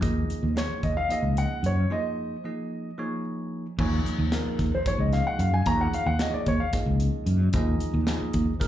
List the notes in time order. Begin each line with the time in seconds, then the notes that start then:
0.01 D#2 F3 A#3 D#4 G#4 D#5, kick, closed hi-hat
0.30 muted fretless electric bass stroke, closed hi-hat
0.43 D#2
0.55 F3 A#3 D#4 G#4 C5 C#5, snare, closed hi-hat
0.69 muted fretless electric bass stroke
0.83 D#2 D#5, kick, closed hi-hat
0.97 F5
1.09 F3 A#3 D#4 G#4 D#5, muted fretless electric bass stroke, closed hi-hat
1.22 C#2
1.37 F#5, closed hi-hat
1.63 F#2 C#5, closed hi-hat
1.90 F3 A#3 D#4 G#4 C5 D#5
2.44 F3 A#3 D#4 G#4 D#5
2.98 F3 A#3 D#4 G#4 C#5
3.78 D#2 F3 A#3 D#4 G#4 C#5, kick, crash
4.05 muted fretless electric bass stroke, closed hi-hat
4.18 D#2
4.32 F3 A#3 D#4 G#4 A#4, snare, closed hi-hat
4.46 muted fretless electric bass stroke
4.59 D#2, kick, snare, closed hi-hat
4.75 C5
4.86 F3 A#3 D#4 G#4 C#5, muted fretless electric bass stroke, kick, closed hi-hat
4.98 C#2 D#5
5.13 F5, snare, closed hi-hat
5.27 F#5
5.39 F#2 F5, closed hi-hat
5.54 G#5
5.66 D#2 F3 A#3 D#4 G#4 C#5 A#5, kick, closed hi-hat
5.81 F#5
5.93 F5, muted fretless electric bass stroke, closed hi-hat
6.06 D#2 F#5
6.19 F3 A#3 D#4 G#4 C#5 D#5, snare, closed hi-hat
6.33 D5, muted fretless electric bass stroke
6.46 D#2 C#5, kick, closed hi-hat
6.60 F5
6.73 F3 A#3 D#4 G#4 D#5, muted fretless electric bass stroke, kick, snare, closed hi-hat
6.86 C#2
7.00 closed hi-hat
7.26 F#2, closed hi-hat
7.53 D#2 F3 A#3 D#4 G#4 D#5, kick, closed hi-hat
7.80 muted fretless electric bass stroke, closed hi-hat
7.94 D#2
8.07 F3 A#3 D#4 G#4 D#5, snare, closed hi-hat
8.21 muted fretless electric bass stroke
8.33 D#2, kick, closed hi-hat
8.60 F3 A#3 D#4 G#4 A#4, muted fretless electric bass stroke, kick, snare, closed hi-hat